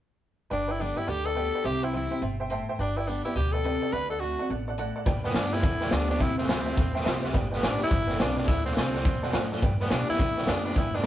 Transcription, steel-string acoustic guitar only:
0.51 1.06 G2 medium
0.80 0.97 D3 medium
0.80 0.97 G3 medium
0.80 0.97 B3 medium
0.80 0.95 G4 medium
0.96 1.08 B3 soft
0.96 1.07 G4 medium
1.08 1.34 D3 medium
1.35 1.63 D3 medium
1.35 1.64 G3 medium
1.35 1.64 B3 medium
1.35 1.64 G4 medium
1.64 2.19 C3 medium
1.93 2.10 E3 medium
1.93 2.11 G3 medium
1.93 2.11 C4 medium
1.93 2.09 E4 medium
2.10 2.22 C4 soft
2.10 2.21 E4 medium
2.22 2.49 B2 medium
2.50 2.78 A2 medium
2.79 3.34 G2 medium
3.08 3.25 D3 medium
3.08 3.25 G3 medium
3.08 3.25 B3 medium
3.08 3.24 G4 medium
3.25 3.36 B3 medium
3.25 3.36 G4 medium
3.36 3.63 B2 medium
3.64 3.92 C3 medium
3.92 4.21 D3 medium
4.22 4.39 D3 medium
4.22 4.39 A3 medium
4.22 4.39 C4 medium
4.22 4.38 F#4 medium
4.39 4.50 C4 soft
4.39 4.50 F#4 medium
4.50 4.77 B2 medium
4.78 5.06 A2 medium
5.06 5.62 G2 medium
5.35 5.52 D3 medium
5.35 5.53 G3 loud
5.35 5.53 B3 loud
5.35 5.53 G4 medium
5.54 5.64 B3 soft
5.54 5.64 G4 medium
5.64 5.92 D3 medium
5.93 6.10 D3 medium
5.93 6.10 G3 medium
5.93 6.10 B3 loud
5.93 6.09 G4 loud
6.10 6.21 B3 medium
6.10 6.21 G4 medium
6.21 6.76 C3 medium
6.50 6.67 E3 medium
6.50 6.67 G3 medium
6.50 6.67 C4 medium
6.50 6.66 E4 loud
6.67 6.78 C4 soft
6.67 6.77 E4 medium
6.78 7.33 G2 medium
7.06 7.34 E3 medium
7.06 7.34 G3 medium
7.06 7.34 C4 medium
7.06 7.34 E4 medium
7.34 7.89 G2 medium
7.62 7.80 D3 medium
7.62 7.80 G3 medium
7.62 7.81 B3 medium
7.62 7.79 G4 loud
7.80 7.92 B3 medium
7.80 7.91 G4 medium
7.91 8.19 B2 medium
8.20 8.48 C3 medium
8.49 8.75 D3 medium
8.76 8.94 D3 medium
8.76 8.94 A3 medium
8.76 8.94 C4 medium
8.76 8.93 F#4 medium
8.94 9.06 C4 soft
8.94 9.05 F#4 medium
9.05 9.33 B2 medium
9.34 9.62 A2 medium
9.64 10.18 G2 medium
9.91 10.08 D3 medium
9.91 10.09 G3 medium
9.91 10.09 B3 medium
9.91 10.08 G4 medium
10.10 10.20 B3 medium
10.10 10.20 G4 medium
10.20 10.48 D3 medium
10.49 10.66 D3 medium
10.49 10.66 G3 medium
10.49 10.66 B3 loud
10.49 10.66 G4 medium
10.67 10.78 B3 soft
10.67 10.77 G4 medium
10.77 11.06 G2 medium

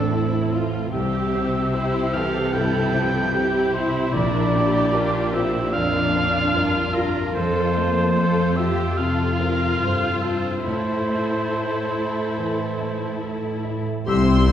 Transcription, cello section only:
0.00 0.89 A2 soft
0.93 4.11 C3 medium
4.16 6.52 A#2 medium
6.56 7.36 G2 soft
7.36 9.77 F2 medium
9.82 10.66 G2 soft
10.66 13.83 A2 soft
14.07 14.52 C3 medium

